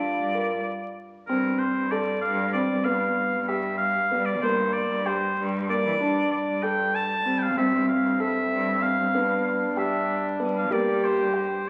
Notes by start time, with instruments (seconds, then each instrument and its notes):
Already playing: felt piano D4, french horn F4, oboe D5
0.18 cello G2
0.34 felt piano A#4
1.26 cello G2, felt piano C4, oboe A#4
1.59 oboe C5
1.76 cello G2
1.91 felt piano A4, oboe D5
2.21 cello G2, oboe F5
2.53 felt piano C4, oboe D5
2.71 cello G2
2.84 cello G2, felt piano B3, oboe F5
3.33 cello G2
3.48 felt piano G4, oboe E5
3.78 oboe F5
4.11 cello G3, felt piano B3
4.25 oboe D5
4.42 cello G2, felt piano A#3, oboe C5
4.73 oboe D5
4.90 cello G2
5.06 felt piano G4, oboe C5
5.37 cello G2
5.70 felt piano A#3, oboe D5
5.85 cello E3
6.00 cello G2, felt piano D4
6.32 oboe D5
6.47 cello G2
6.63 felt piano A4, oboe G5
6.95 oboe A5
7.25 cello G3, felt piano C4
7.38 oboe G5
7.43 oboe F5
7.57 cello G2, french horn C4, felt piano C4, oboe E5
7.88 oboe F5
8.03 cello G2
8.20 felt piano A4, oboe E5
8.51 cello G2
8.82 felt piano C4, oboe F5
8.99 cello G2
9.14 cello G2, felt piano B3, french horn D4
9.47 oboe F5
9.62 cello G2
9.77 felt piano G4, oboe E5
10.40 cello G3, felt piano B3
10.57 oboe F5
10.71 cello G2, felt piano A#3, french horn G4, oboe D5
11.04 oboe C5
11.20 cello G2
11.34 felt piano G4, oboe C5